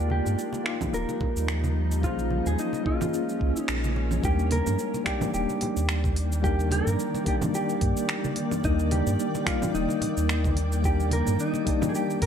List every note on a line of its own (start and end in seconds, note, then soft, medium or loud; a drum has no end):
0.00 0.22 D#2 loud
0.00 2.01 F3 medium
0.00 2.01 G3 medium
0.00 0.62 A#3 medium
0.00 0.63 D#4 medium
0.00 2.01 D#4 loud
0.00 0.63 F4 medium
0.00 0.10 G4 medium
0.00 0.64 G4 medium
0.00 0.64 D5 medium
0.10 0.90 G4 loud
0.10 high conga medium
0.26 0.36 G2 medium
0.26 low conga medium
0.26 cabasa medium
0.39 cabasa soft
0.53 muted conga medium
0.53 cabasa soft
0.64 2.00 A#3 medium
0.64 2.00 D#4 medium
0.64 2.01 F4 medium
0.64 2.01 G4 medium
0.64 finger snap medium
0.69 2.02 F5 medium
0.81 kick medium
0.81 high conga medium
0.81 low conga medium
0.81 cabasa medium
0.93 1.06 D#1 medium
0.93 1.72 A#4 loud
0.93 cabasa medium
1.09 muted conga medium
1.09 cabasa soft
1.21 kick loud
1.21 muted conga medium
1.21 low conga medium
1.36 2.05 D#2 medium
1.36 cabasa medium
1.48 finger snap medium
1.48 cabasa soft
1.64 high conga medium
1.64 cabasa soft
1.92 cabasa medium
2.01 2.42 A#1 medium
2.01 4.22 G#3 medium
2.01 2.82 A#3 medium
2.01 4.22 A#3 medium
2.01 2.83 C#4 medium
2.01 4.22 C#4 loud
2.01 2.83 F4 medium
2.01 2.48 F4 loud
2.01 2.84 G#4 medium
2.01 kick loud
2.01 cabasa soft
2.06 2.85 C5 medium
2.19 muted conga soft
2.19 cabasa soft
2.31 high conga medium
2.46 2.56 D#2 medium
2.46 2.59 G#4 medium
2.46 low conga medium
2.46 cabasa medium
2.59 2.85 D#4 medium
2.59 cabasa medium
2.73 muted conga medium
2.73 cabasa soft
2.84 4.20 A#3 medium
2.84 4.20 C#4 medium
2.84 4.21 F4 medium
2.84 3.59 F4 medium
2.84 4.22 G#4 medium
2.84 kick loud
2.89 4.22 D#5 medium
3.01 high conga medium
3.01 low conga medium
3.01 cabasa medium
3.14 cabasa medium
3.29 cabasa soft
3.41 3.53 C#2 loud
3.41 kick medium
3.56 3.92 D#4 medium
3.56 cabasa medium
3.68 4.20 A#1 medium
3.68 finger snap medium
3.68 cabasa soft
3.84 high conga medium
3.84 cabasa soft
3.96 muted conga medium
4.11 muted conga soft
4.11 low conga medium
4.11 cabasa medium
4.21 4.62 D#2 loud
4.21 12.26 D#3 medium
4.21 5.02 G3 medium
4.21 5.03 A#3 medium
4.21 12.26 A#3 medium
4.21 5.03 D4 medium
4.21 5.04 D#4 medium
4.21 4.52 G4 loud
4.21 12.26 D5 medium
4.21 12.26 G5 medium
4.21 kick loud
4.21 cabasa medium
4.26 5.05 A#4 medium
4.39 muted conga soft
4.39 cabasa soft
4.51 5.03 A#4 loud
4.51 open hi-hat medium
4.51 high conga medium
4.67 4.77 G2 medium
4.67 low conga medium
4.67 cabasa medium
4.79 cabasa medium
4.94 muted conga medium
4.94 cabasa soft
5.04 6.40 G3 medium
5.04 6.40 A#3 medium
5.04 6.41 D4 medium
5.04 6.42 D#4 medium
5.04 5.33 G4 medium
5.04 finger snap medium
5.04 kick loud
5.04 open hi-hat medium
5.09 6.42 D5 medium
5.21 high conga medium
5.21 low conga medium
5.21 cabasa medium
5.34 5.46 D#1 loud
5.34 6.13 G4 medium
5.34 cabasa medium
5.49 muted conga soft
5.49 cabasa soft
5.61 open hi-hat medium
5.61 muted conga medium
5.61 low conga medium
5.76 6.82 D#2 medium
5.76 cabasa medium
5.89 finger snap medium
5.89 cabasa medium
6.04 kick loud
6.04 high conga medium
6.04 cabasa soft
6.16 open hi-hat medium
6.32 cabasa medium
6.42 7.22 G3 medium
6.42 7.23 A#3 medium
6.42 7.24 D4 medium
6.42 7.24 D#4 medium
6.42 6.70 G4 loud
6.42 kick loud
6.42 cabasa medium
6.46 7.25 A#4 medium
6.59 muted conga soft
6.59 cabasa soft
6.71 7.27 A#4 loud
6.71 open hi-hat medium
6.71 high conga medium
6.87 6.97 G2 medium
6.87 low conga medium
6.87 cabasa medium
7.00 cabasa medium
7.14 muted conga medium
7.14 cabasa soft
7.24 8.60 G3 medium
7.24 8.61 A#3 medium
7.24 8.61 D4 medium
7.24 8.62 D#4 medium
7.24 7.35 G4 medium
7.24 kick loud
7.24 open hi-hat medium
7.29 8.62 D5 medium
7.42 high conga medium
7.42 low conga medium
7.42 cabasa medium
7.55 8.33 G4 medium
7.55 cabasa medium
7.69 cabasa soft
7.81 7.94 G2 loud
7.81 kick loud
7.81 open hi-hat medium
7.97 cabasa medium
8.09 finger snap medium
8.09 cabasa medium
8.24 high conga loud
8.24 cabasa soft
8.36 open hi-hat medium
8.36 muted conga soft
8.51 muted conga soft
8.51 low conga medium
8.51 cabasa medium
8.62 9.02 D#2 medium
8.62 9.43 G3 medium
8.62 9.43 A#3 medium
8.62 9.44 D4 medium
8.62 8.93 D#4 loud
8.62 9.44 D#4 medium
8.62 kick loud
8.62 cabasa medium
8.67 9.45 A#4 medium
8.79 muted conga soft
8.79 cabasa soft
8.91 9.48 G4 loud
8.91 open hi-hat medium
8.91 high conga loud
9.07 9.17 G2 medium
9.07 low conga medium
9.07 cabasa medium
9.20 cabasa medium
9.35 muted conga medium
9.35 cabasa soft
9.44 10.80 G3 medium
9.44 10.81 A#3 medium
9.44 10.82 D#4 medium
9.44 9.74 F4 medium
9.44 finger snap medium
9.44 kick loud
9.44 open hi-hat medium
9.49 10.83 D5 medium
9.62 high conga medium
9.62 low conga medium
9.62 cabasa medium
9.74 9.87 D#1 medium
9.74 10.53 D#4 medium
9.74 cabasa medium
9.89 muted conga medium
9.89 cabasa soft
10.01 open hi-hat medium
10.01 muted conga medium
10.01 low conga medium
10.17 11.23 D#2 medium
10.17 cabasa medium
10.29 finger snap medium
10.29 cabasa medium
10.44 kick loud
10.44 high conga loud
10.44 cabasa soft
10.57 open hi-hat medium
10.72 cabasa medium
10.82 11.63 G3 medium
10.82 11.63 A#3 medium
10.82 11.64 D4 medium
10.82 11.65 D#4 medium
10.82 11.13 G4 loud
10.82 kick loud
10.82 cabasa medium
10.87 11.65 A#4 medium
11.00 muted conga soft
11.00 cabasa soft
11.11 11.41 A#4 loud
11.11 open hi-hat medium
11.11 high conga medium
11.27 11.37 G2 medium
11.27 low conga medium
11.27 cabasa medium
11.39 11.90 D#4 medium
11.39 cabasa medium
11.54 muted conga medium
11.54 cabasa soft
11.65 12.26 G3 medium
11.65 12.26 A#3 medium
11.65 12.26 D4 medium
11.65 12.26 D#4 medium
11.65 kick loud
11.65 open hi-hat medium
11.70 12.26 D5 medium
11.82 high conga medium
11.82 low conga medium
11.82 cabasa medium
11.89 11.95 G#4 medium
11.95 12.22 G4 loud
11.95 cabasa medium
12.10 cabasa soft
12.22 12.26 G2 medium
12.22 12.26 A#4 loud
12.22 kick loud
12.22 open hi-hat medium